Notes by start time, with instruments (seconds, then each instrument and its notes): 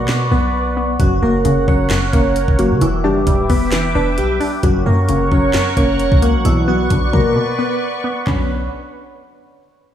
Already playing: 808-style bass B2, synth pluck D3 F#3 B3, analog synth pad B4 D5 F#5 C#6
0.08 synth pluck B2, snare, clap
0.31 808-style bass B1, synth pluck B3, synth keys B3 B4
0.77 synth pluck B3
1.00 808-style bass F#1, synth pluck F#2, synth keys F#3 F#4, analog synth pad A#4 C#5 F#5, kick, closed hi-hat
1.22 808-style bass F#1, synth pluck A#3, synth keys A#3 A#4
1.45 808-style bass F#1, synth pluck C#3, closed hi-hat
1.68 808-style bass F#1, synth pluck F#3, synth keys C#4 C#5, kick
1.90 synth pluck F#2, snare, clap, closed hi-hat
2.13 808-style bass F#1, synth pluck A#3, synth keys C#4 C#5, kick, closed hi-hat
2.36 closed hi-hat
2.48 808-style bass F#1, kick
2.59 synth keys F#3 F#4, synth pluck A#3, closed hi-hat
2.71 808-style bass C#3
2.81 808-style bass E1, synth pluck E3, synth keys E3 E4, analog synth pad B4 E5 G5 D6, closed hi-hat
3.04 808-style bass F#1, synth keys G3 G4, synth pluck D4
3.27 808-style bass D1, synth pluck G3, kick, closed hi-hat
3.50 808-style bass E1, synth pluck B3, synth keys B3 B4, kick, open hi-hat
3.72 synth pluck E3, snare, clap, closed hi-hat
3.95 808-style bass E1, synth keys B3 B4, synth pluck D4
4.18 808-style bass B1, synth keys G3 G4, closed hi-hat
4.40 synth pluck D4, open hi-hat
4.63 808-style bass F#1, synth pluck F#2, synth keys F#3 F#4, analog synth pad A#4 C#5 F#5 C#6, kick, closed hi-hat
4.86 808-style bass F#2, synth pluck A#3, synth keys A#3 A#4
5.09 808-style bass F#1, synth pluck C#3, closed hi-hat
5.31 808-style bass F#1, synth pluck F#3, synth keys C#4 C#5, kick
5.53 synth pluck F#2, snare, clap, closed hi-hat
5.77 808-style bass F#1, synth pluck A#3, synth keys C#4 C#5, kick, closed hi-hat
6.00 808-style bass E1, closed hi-hat
6.12 808-style bass C#2, kick
6.22 synth keys F#3 F#4, synth pluck A#3, closed hi-hat
6.34 808-style bass A#1
6.45 808-style bass B1, synth pluck B2, synth keys E3 E4, analog synth pad B4 D5 C#6, closed hi-hat
6.68 synth keys F#3 F#4, synth pluck B3
6.90 808-style bass B1, synth pluck D3, kick, closed hi-hat
7.13 808-style bass B2, synth pluck F#3, synth keys A#3 A#4, kick
7.36 synth pluck B2
7.59 synth pluck B3, synth keys B3 B4
8.04 synth pluck B3
8.27 808-style bass B1, synth pluck D3 F#3 B3 C#4, synth keys B3, analog synth pad D4 B4 C#5 F#5, kick, clap, floor tom